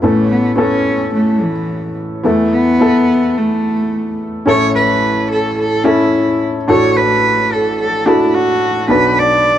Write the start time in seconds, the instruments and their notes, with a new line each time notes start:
0.02 upright piano A1 A2 B3 C#4 A4, cello A3
0.32 cello B3
0.56 upright piano B3 C#4 A4, cello C#4
1.16 cello A3
1.42 cello E3
2.23 upright piano E2 E3 B3 E4 A4, cello A3
2.54 cello B3
2.79 upright piano B3 E4 A4
3.38 cello A3
4.46 upright piano A1 A2 C#4 E4 A4, cello C#5
4.75 cello B4
5.32 cello A4
5.59 cello A4
5.84 upright piano C#4 E4 A4, cello E4
6.68 upright piano A1 A2 D4 F#4 A4, cello C#5
6.96 cello B4
7.52 cello A4
7.80 cello A4
8.06 upright piano D4 F#4 A4, cello E4
8.35 cello F#4
8.88 upright piano B1 B2 D4 F#4 B4, cello B4
9.18 cello D5